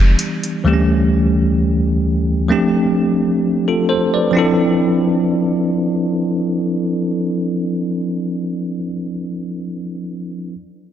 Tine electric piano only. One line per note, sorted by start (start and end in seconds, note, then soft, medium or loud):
0.00 0.14 E3 medium
0.00 0.14 G3 medium
0.00 0.15 B3 medium
0.00 0.15 D4 medium
0.00 0.16 G4 medium
0.64 2.45 D2 medium
0.64 2.46 E3 medium
0.64 2.46 G3 medium
0.64 2.46 A3 medium
0.64 0.73 C4 medium
0.64 2.47 G4 medium
0.73 2.50 C#4 medium
2.48 4.30 F3 medium
2.48 4.30 A3 medium
2.48 4.31 C4 medium
2.48 4.31 D4 medium
2.48 3.41 G4 medium
3.68 3.88 F4 medium
3.68 3.87 A4 medium
3.89 4.12 A4 medium
3.89 4.12 C5 medium
4.14 4.57 B4 medium
4.14 4.57 D5 medium
4.31 8.74 F3 medium
4.31 8.76 C4 medium
4.31 8.77 D4 medium
4.37 8.79 E4 medium
4.37 8.81 A4 medium